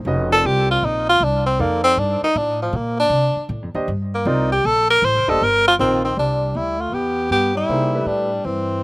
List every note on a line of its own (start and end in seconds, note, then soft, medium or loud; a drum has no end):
0.05 0.43 F1 medium
0.05 0.29 C#4 medium
0.05 0.29 F#4 medium
0.05 0.30 B4 medium
0.05 0.30 D#5 medium
0.31 1.13 C4 medium
0.31 1.13 F4 medium
0.31 0.48 A4 loud
0.31 1.13 A#4 medium
0.31 1.13 D5 medium
0.44 0.82 C2 medium
0.44 0.70 G4 loud
0.71 0.87 F4 loud
0.82 1.19 A#1 medium
0.82 1.09 D#4 medium
1.09 1.26 F4 loud
1.20 1.58 C2 medium
1.24 1.46 D4 loud
1.46 1.62 C4 medium
1.59 1.96 F2 medium
1.59 1.83 A#3 medium
1.59 2.66 D#4 medium
1.59 2.66 A4 medium
1.59 2.66 D5 medium
1.59 2.66 F5 medium
1.84 2.01 C4 loud
1.97 2.20 G2 medium
1.97 2.23 D4 medium
2.22 2.39 D#4 loud
2.22 muted upright bass stroke soft
2.35 2.72 A2 medium
2.35 2.61 D4 medium
2.63 2.78 F3 medium
2.73 3.09 A#2 medium
2.73 2.99 A#3 medium
3.00 3.47 D4 loud
3.10 3.34 C3 medium
3.36 muted upright bass stroke soft
3.49 3.62 A2 medium
3.62 3.74 F2 medium
3.74 3.87 D#2 medium
3.74 3.87 D4 medium
3.74 3.87 G4 medium
3.74 3.87 C5 medium
3.74 3.87 D#5 medium
3.88 4.25 G2 medium
4.15 4.29 A#3 medium
4.25 4.62 C2 medium
4.25 4.48 C4 medium
4.25 4.52 D#4 medium
4.25 4.49 F4 medium
4.25 4.49 A#4 medium
4.25 4.49 D5 medium
4.52 4.68 G4 loud
4.64 5.01 A#1 medium
4.64 4.90 A4 loud
4.91 5.06 A#4 loud
5.02 5.17 A1 medium
5.02 5.31 C5 loud
5.15 5.27 F1 medium
5.28 5.39 D#1 medium
5.28 5.39 D4 medium
5.28 5.39 G4 medium
5.28 5.45 A4 loud
5.28 5.39 C5 medium
5.28 5.40 D#5 medium
5.41 5.78 G1 medium
5.41 5.67 A#4 loud
5.68 5.75 F4 loud
5.79 6.16 A#1 medium
5.79 6.02 D#3 medium
5.79 6.01 C4 medium
5.79 6.03 C4 medium
5.79 6.01 F4 medium
5.79 6.02 A#4 medium
5.79 6.02 C5 medium
6.04 6.15 D#3 medium
6.04 6.16 C4 medium
6.16 6.53 C2 medium
6.16 6.55 G3 medium
6.16 6.58 D4 medium
6.55 6.91 D2 medium
6.55 6.80 G3 medium
6.55 6.83 E4 medium
6.79 6.94 A3 medium
6.79 6.96 F4 medium
6.92 7.29 E2 medium
6.92 7.30 B3 medium
6.92 7.31 G4 loud
7.30 7.67 G2 medium
7.30 7.54 B3 medium
7.30 7.55 G4 medium
7.55 8.06 G3 medium
7.55 8.09 E4 medium
7.69 8.05 C3 medium
7.69 7.91 A#3 medium
7.69 7.91 D#4 medium
7.69 7.92 G#4 medium
7.69 7.92 C5 medium
7.94 8.27 A3 medium
7.94 8.27 D4 medium
7.94 8.27 G4 medium
7.94 8.27 B4 medium
8.06 8.43 A2 medium
8.06 8.47 G3 medium
8.06 8.47 D4 medium
8.44 8.82 G2 medium
8.44 8.83 E3 medium
8.44 8.83 C4 medium